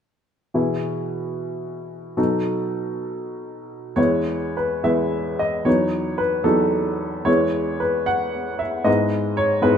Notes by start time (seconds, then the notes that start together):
0.54 B2 E3 E4 G#4
2.17 B2 F#3 D#4 A4
3.96 E2 G#3 B3 E4 C#5
4.57 B4
4.84 E2 G#3 B3 E4 E5
5.39 D#5
5.65 E2 F#3 B3 D#4 C#5
6.18 B4
6.44 E2 F#3 B3 D#4 A4
7.25 E2 G#3 B3 E4 C#5
7.80 B4
8.06 F#5
8.59 E5
8.84 G#2 G#3 B3 E4 D#5
9.37 C#5
9.62 G#2 G#3 B3 E4 B4